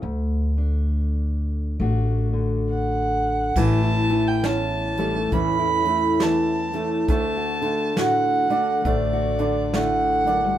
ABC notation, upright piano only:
X:1
M:4/4
L:1/16
Q:"Swing" 1/4=68
K:D
V:1 name="Upright piano"
z16 | E,2 E,2 C2 G, A, E,2 A,2 E,2 A,2 | A,2 A,2 F2 D2 A,2 D2 A,2 D2 |]